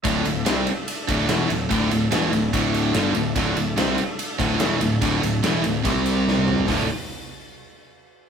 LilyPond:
<<
  \new Staff \with { instrumentName = "Tonewheel organ" } { \time 4/4 \key c \mixolydian \tempo 4 = 145 <d' a' e''>1~ | <d' a' e''>1~ | <d' a' e''>1~ | <d' a' e''>2 <c' g' d''>2 |
<d' a' e''>8 r2. r8 | }
  \new Staff \with { instrumentName = "Distorted electric guitar" } { \clef bass \time 4/4 \key c \mixolydian <d, a, d>8 <d, a,>8 <c g c'>8 r4 <d, a, d>8 <e, b, e>8 <d, a,>8 | <d, a, d>8 <d, a,>8 <e, b, e>8 <d, a,>8 <d, a, d>4 <g, d g>8 <d, a,>8 | <d, a, d>8 <d, a,>8 <c g c'>8 r4 <d, a, d>8 <e, b, e>8 <d, a,>8 | <d, a, d>8 <d, a,>8 <e, b, e>8 <d, a,>8 <c g c'>2 |
<d, a, d>8 r2. r8 | }
  \new Staff \with { instrumentName = "Distorted electric guitar" } { \clef bass \time 4/4 \key c \mixolydian <d, a, d>8 <d, a,>8 <c g c'>8 r4 <d, a, d>8 <e, b, e>8 <d, a,>8 | <d, a, d>8 <d, a,>8 <e, b, e>8 <d, a,>8 <d, a, d>4 <g, d g>8 <d, a,>8 | <d, a, d>8 <d, a,>8 <c g c'>8 r4 <d, a, d>8 <e, b, e>8 <d, a,>8 | <d, a, d>8 <d, a,>8 <e, b, e>8 <d, a,>8 <c g c'>2 |
<d, a, d a f'>8 r2. r8 | }
  \new Staff \with { instrumentName = "Overdriven electric guitar" } { \clef bass \time 4/4 \key c \mixolydian <d, a, d>8 <d, a,>8 <c g c'>8 r4 <d, a, d>8 <e, b, e>8 <d, a,>8 | <d, a, d>8 <d, a,>8 <e, b, e>8 <d, a,>8 <d, a, d>4 <g, d g>8 <d, a,>8 | <d, a, d>8 <d, a,>8 <c g c'>8 r4 <d, a, d>8 <e, b, e>8 <d, a,>8 | <d, a, d>8 <d, a,>8 <e, b, e>8 <d, a,>8 <c g c'>2 |
<d, a, d>8 r2. r8 | }
  \new Staff \with { instrumentName = "Picked electric bass" } { \clef bass \time 4/4 \key c \mixolydian d,,8 d,,8 c,8 r4 d,,8 e,,8 d,,8 | d,,8 d,,8 e,,8 d,,8 d,,4 g,,8 d,,8 | d,,8 d,,8 c,8 r4 d,,8 e,,8 d,,8 | d,,8 d,,8 e,,8 d,,8 c,2 |
d,,8 r2. r8 | }
  \new DrumStaff \with { instrumentName = "Drums" } \drummode { \time 4/4 <bd cymr>8 cymr8 <cymr sn>8 cymr8 cymr8 <bd cymr>16 sn16 <cymr sn>8 cymr8 | <bd cymr>8 cymr8 <cymr sn>8 cymr8 <bd cymr>8 cymr8 <cymr sn>8 cymr8 | <bd cymr>8 cymr8 <cymr sn>8 cymr8 cymr8 <bd cymr>16 sn16 <cymr sn>8 cymr8 | <bd cymr>8 cymr8 <cymr sn>8 cymr8 <bd cymr>8 cymr8 sn16 tommh16 toml16 tomfh16 |
<hho bd sn>4 r4 r4 r4 | }
>>